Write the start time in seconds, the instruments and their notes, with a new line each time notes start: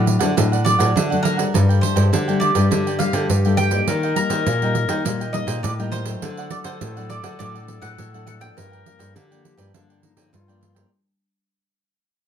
Already playing: nylon-string guitar A2 F#3 A3 D4, mandolin D5
0.06 muted cavaquinho stroke, pandeiro
0.19 nylon-string guitar D3 F#3 A3 D4, cavaquinho A4 D5 F#5, pandeiro
0.36 nylon-string guitar A2 D3 F#3 A3 D4, cavaquinho D4 A4 D5 F#5, pandeiro
0.52 cavaquinho A4 D5 F#5, pandeiro
0.65 nylon-string guitar F#3 A3 D4, mandolin D5, muted cavaquinho stroke, pandeiro
0.79 nylon-string guitar A2, cavaquinho A4 D5 F#5, pandeiro
0.96 nylon-string guitar A2 D3, pandeiro
1.10 nylon-string guitar F#3 A3 D4, cavaquinho A4 D5 F#5, pandeiro
1.23 cavaquinho D4 A4 D5 F#5, mandolin A#4, pandeiro
1.37 nylon-string guitar G3 D4, cavaquinho A4 D5 F#5, pandeiro
1.53 nylon-string guitar G2, cavaquinho D4 A4 D5 G5, clarinet G4, pandeiro
1.69 cavaquinho A4 D5 G5, pandeiro
1.81 nylon-string guitar G3 A3 D4, mandolin C5, pandeiro
1.96 nylon-string guitar G2, cavaquinho A4 D5 G5, pandeiro
2.12 nylon-string guitar D3, cavaquinho D4 A4 D5 G5, pandeiro
2.28 nylon-string guitar G3 A3 D4, cavaquinho A4 D5 G5, pandeiro
2.40 mandolin D5, muted cavaquinho stroke, pandeiro
2.55 nylon-string guitar G2 G3 A3 D4, cavaquinho A4 D5 G5, pandeiro
2.71 nylon-string guitar G2 D3 G3 A3 D4, cavaquinho D4 A4 D5 G5, pandeiro
2.87 cavaquinho A4 D5 G5, pandeiro
2.99 nylon-string guitar G3 A3 D4, mandolin F5, muted cavaquinho stroke, pandeiro
3.13 nylon-string guitar D3, cavaquinho A4 D5 G5, pandeiro
3.29 nylon-string guitar G2 D3, pandeiro
3.45 nylon-string guitar G3 A3 D4, cavaquinho A4 D5 G5, pandeiro
3.57 cavaquinho D4 A4 D5 G5, mandolin G5, pandeiro
3.71 nylon-string guitar G3 A#3 D#4, cavaquinho A4 D5 G5, pandeiro
3.88 nylon-string guitar D#3, cavaquinho G4 A#4 D#5 G5, clarinet A#4, pandeiro
4.03 cavaquinho A#4 D#5 G5, pandeiro
4.16 nylon-string guitar G3 A#3 D#4, mandolin A#5, pandeiro
4.30 nylon-string guitar D#3, cavaquinho A#4 D#5 G5, pandeiro
4.46 nylon-string guitar A#2, cavaquinho G4 A#4 D#5 G5, pandeiro
4.62 nylon-string guitar G3 A#3 D#4, cavaquinho A#4 D#5 G5, pandeiro
4.75 muted cavaquinho stroke, pandeiro
4.88 nylon-string guitar D#3 G3 A#3 D#4, cavaquinho A#4 D#5 G5, pandeiro
5.05 nylon-string guitar A#2 D#3 G3 A#3 D#4, cavaquinho G4 A#4 D#5 G5, pandeiro
5.21 cavaquinho A#4 D#5 G5, pandeiro
5.33 nylon-string guitar G3 A#3 D#4, mandolin D#5, muted cavaquinho stroke, pandeiro
5.47 nylon-string guitar A#2, cavaquinho A#4 D#5 G5, pandeiro
5.63 nylon-string guitar A2, mandolin D5, pandeiro
5.78 nylon-string guitar G3 A#3 D#4, cavaquinho A#4 D#5 G5, pandeiro
5.92 cavaquinho G4 A#4 D#5 G5, mandolin C5, pandeiro
6.05 nylon-string guitar F#3 A3 D4, cavaquinho A#4 D#5 G5, pandeiro
6.22 nylon-string guitar D3, cavaquinho D4 A4 D5 F#5, clarinet A4, pandeiro
6.37 cavaquinho A4 D5 F#5, pandeiro
6.50 nylon-string guitar F#3 A3 D4, mandolin D5, pandeiro
6.64 nylon-string guitar D3, cavaquinho A4 D5 F#5, mandolin C5, pandeiro
6.81 nylon-string guitar A2, cavaquinho D4 A4 D5 F#5, pandeiro
6.96 nylon-string guitar F#3 A3 D4, cavaquinho A4 D5 F#5, pandeiro
7.09 mandolin D5, muted cavaquinho stroke, pandeiro
7.23 nylon-string guitar D3 F#3 A3 D4, cavaquinho A4 D5 F#5, pandeiro
7.39 nylon-string guitar A2 D3 F#3 A3 D4, cavaquinho D4 A4 D5 F#5, mandolin D5, pandeiro
7.55 cavaquinho A4 D5 F#5, pandeiro
7.68 nylon-string guitar F#3 A3 D4, muted cavaquinho stroke, pandeiro
7.82 nylon-string guitar A2, cavaquinho A4 D5 F#5, mandolin F#5, pandeiro
7.98 nylon-string guitar A2, pandeiro
8.13 nylon-string guitar F#3 A3 D4, cavaquinho A4 D5 F#5, pandeiro
8.26 cavaquinho D4 A4 D5 F#5, mandolin F#5, pandeiro
8.40 nylon-string guitar F3 A#3 D4, cavaquinho A4 D5 F#5, mandolin G5, pandeiro
8.57 nylon-string guitar G2, cavaquinho F4 A#4 D5 G5, clarinet A#4, pandeiro
8.72 cavaquinho A#4 D5 G5, pandeiro
8.86 nylon-string guitar F3 A#3 D4, pandeiro
8.99 nylon-string guitar G2, cavaquinho A#4 D5 G5, pandeiro
9.15 nylon-string guitar D3, cavaquinho F4 A#4 D5 G5, clarinet G4, pandeiro
9.30 nylon-string guitar F3 A#3 D4, cavaquinho A#4 D5 G5, pandeiro
9.45 pandeiro
9.57 nylon-string guitar G2, cavaquinho A#4 D5 G5, pandeiro
9.74 nylon-string guitar G2 D3 F3 A#3 D4, clarinet D4, cavaquinho F4 A#4 D5 G5, pandeiro
9.90 cavaquinho A#4 D5 G5, pandeiro
10.03 nylon-string guitar F3 A#3 D4, clarinet D#4, muted cavaquinho stroke, pandeiro
10.17 nylon-string guitar D3, cavaquinho A#4 D5 G5, pandeiro
10.33 nylon-string guitar G2 D3, clarinet F4, pandeiro
10.48 nylon-string guitar F3 A#3 D4, cavaquinho A#4 D5 G5, pandeiro
10.61 cavaquinho F4 A#4 D5 G5, pandeiro
10.74 nylon-string guitar F3 A#3 D4, cavaquinho A#4 D5 G5, pandeiro